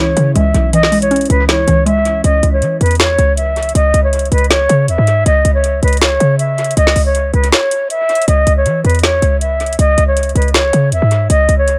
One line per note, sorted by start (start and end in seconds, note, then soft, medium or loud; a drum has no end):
0.00 0.15 C#2 loud
0.00 0.16 E3 loud
0.00 2.20 E3 medium
0.00 0.34 G#3 medium
0.00 0.54 C#4 medium
0.00 2.20 C#4 medium
0.00 0.92 E4 medium
0.00 2.20 E4 medium
0.00 0.34 C#5 medium
0.17 0.35 C#3 loud
0.17 0.72 E3 medium
0.17 closed hi-hat medium
0.35 0.54 C#2 loud
0.35 0.91 G#3 medium
0.35 0.71 E5 medium
0.35 closed hi-hat medium
0.54 1.27 B1 loud
0.54 closed hi-hat medium
0.73 1.66 E3 medium
0.73 1.00 D#5 loud
0.73 closed hi-hat medium
0.83 snare medium
0.92 1.85 G#3 medium
0.92 closed hi-hat soft
0.92 open hi-hat medium
1.02 1.28 C#5 medium
1.02 closed hi-hat medium
1.11 2.05 C#4 medium
1.11 closed hi-hat medium
1.16 closed hi-hat medium
1.21 closed hi-hat medium
1.25 closed hi-hat medium
1.30 1.66 C#2 loud
1.30 1.44 B4 medium
1.30 closed hi-hat medium
1.49 2.24 E4 loud
1.49 1.84 C#5 medium
1.49 snare loud
1.49 closed hi-hat medium
1.67 2.22 C#2 loud
1.67 2.24 E3 medium
1.67 closed hi-hat medium
1.86 2.24 G#3 medium
1.86 2.22 E5 medium
1.86 closed hi-hat medium
2.05 closed hi-hat medium
2.24 2.42 C#2 loud
2.24 2.51 D#5 loud
2.24 closed hi-hat medium
2.43 2.63 C#2 loud
2.43 closed hi-hat medium
2.53 2.79 C#5 medium
2.62 2.80 E3 loud
2.62 closed hi-hat medium
2.81 3.17 E2 loud
2.81 2.95 B4 medium
2.81 closed hi-hat medium
2.86 closed hi-hat medium
2.91 closed hi-hat medium
2.95 closed hi-hat medium
3.00 3.35 C#5 medium
3.00 snare loud
3.00 closed hi-hat medium
3.19 3.73 C#2 loud
3.19 closed hi-hat medium
3.37 3.73 E5 medium
3.37 closed hi-hat medium
3.56 closed hi-hat soft
3.63 closed hi-hat medium
3.69 closed hi-hat medium
3.75 3.93 C#2 loud
3.75 4.02 D#5 loud
3.75 closed hi-hat medium
3.94 4.30 C#2 loud
3.94 closed hi-hat medium
4.04 4.30 C#5 medium
4.13 closed hi-hat medium
4.19 closed hi-hat medium
4.25 closed hi-hat soft
4.32 4.68 C#2 loud
4.32 4.46 B4 medium
4.32 closed hi-hat medium
4.38 closed hi-hat medium
4.44 closed hi-hat soft
4.50 4.86 C#5 medium
4.50 snare loud
4.50 closed hi-hat medium
4.69 4.90 C#3 loud
4.69 closed hi-hat medium
4.88 4.98 E2 loud
4.88 5.24 E5 medium
4.88 closed hi-hat medium
4.98 5.25 G#2 loud
5.07 closed hi-hat medium
5.26 5.44 C#2 loud
5.26 5.53 D#5 loud
5.26 closed hi-hat medium
5.45 5.81 C#2 loud
5.45 closed hi-hat medium
5.54 5.81 C#5 medium
5.64 closed hi-hat medium
5.83 6.19 C#2 loud
5.83 5.97 B4 medium
5.83 closed hi-hat medium
5.88 closed hi-hat medium
5.93 closed hi-hat medium
5.97 closed hi-hat medium
6.01 6.37 C#5 medium
6.01 snare loud
6.01 closed hi-hat medium
6.20 6.75 C#3 loud
6.20 closed hi-hat medium
6.39 6.75 E5 medium
6.39 closed hi-hat medium
6.58 closed hi-hat soft
6.64 closed hi-hat medium
6.71 closed hi-hat medium
6.77 6.95 C#2 loud
6.77 7.04 D#5 loud
6.77 closed hi-hat medium
6.87 snare medium
6.96 7.32 C#2 loud
6.96 open hi-hat medium
7.05 7.32 C#5 medium
7.15 closed hi-hat medium
7.34 7.52 C#2 loud
7.34 7.48 B4 medium
7.34 closed hi-hat soft
7.44 closed hi-hat medium
7.52 7.88 C#5 medium
7.52 snare loud
7.52 closed hi-hat medium
7.71 closed hi-hat medium
7.90 8.26 E5 medium
7.90 closed hi-hat medium
8.09 closed hi-hat soft
8.15 closed hi-hat medium
8.22 closed hi-hat medium
8.28 8.46 C#2 loud
8.28 8.55 D#5 medium
8.28 closed hi-hat medium
8.47 8.67 C#2 loud
8.47 closed hi-hat medium
8.57 8.83 C#5 medium
8.66 8.84 E3 loud
8.66 closed hi-hat medium
8.85 9.21 E2 loud
8.85 8.99 B4 medium
8.85 closed hi-hat medium
8.90 closed hi-hat medium
8.95 closed hi-hat medium
8.99 closed hi-hat medium
9.03 9.39 C#5 medium
9.03 snare loud
9.03 closed hi-hat medium
9.22 9.77 C#2 loud
9.22 closed hi-hat medium
9.41 9.76 E5 medium
9.41 closed hi-hat medium
9.60 closed hi-hat soft
9.66 closed hi-hat medium
9.73 closed hi-hat medium
9.79 9.97 C#2 loud
9.79 10.06 D#5 loud
9.79 closed hi-hat medium
9.98 10.34 C#2 loud
9.98 closed hi-hat medium
10.07 10.34 C#5 medium
10.17 closed hi-hat medium
10.23 closed hi-hat medium
10.29 closed hi-hat soft
10.35 10.72 C#2 loud
10.35 10.50 B4 medium
10.35 closed hi-hat medium
10.42 closed hi-hat soft
10.48 closed hi-hat soft
10.54 10.90 C#5 medium
10.54 snare loud
10.54 closed hi-hat medium
10.73 10.94 C#3 loud
10.73 closed hi-hat medium
10.92 11.02 E2 loud
10.92 11.28 E5 medium
10.92 closed hi-hat medium
11.02 11.29 G#2 loud
11.11 closed hi-hat medium
11.30 11.48 C#2 loud
11.30 11.57 D#5 loud
11.30 closed hi-hat medium
11.49 11.79 C#2 loud
11.49 closed hi-hat medium
11.58 11.79 C#5 medium
11.68 closed hi-hat medium